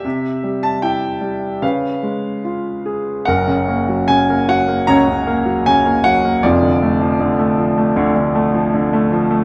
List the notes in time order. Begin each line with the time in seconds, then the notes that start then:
Already playing: G4 E5
0.05 C3
0.43 G3
0.63 A5
0.82 E4 G5
1.21 G3
1.62 C#3 B4 F5
2.03 G#3
2.45 F4
2.86 G#4
3.25 F#1 F#2 A#4 F#5
3.48 C#3
3.68 A#3
3.89 F#3
4.08 C#3 G#5
4.29 A#3
4.49 F#3 F#5
4.68 A#3
4.87 C#2 C#3 C#5 A#5
5.08 C#3
5.27 A#3
5.46 F#3
5.66 C#3 G#5
5.86 A#3
6.04 F#3 F#5
6.24 A#3
6.43 F1 F2 F4 D5
6.62 D3
6.82 A3
7.01 F3
7.20 D3
7.39 A3
7.59 F3
7.78 A3
7.96 D2 D3
8.16 D3
8.35 A3
8.54 F3
8.74 D3
8.93 A3
9.12 F3
9.31 A3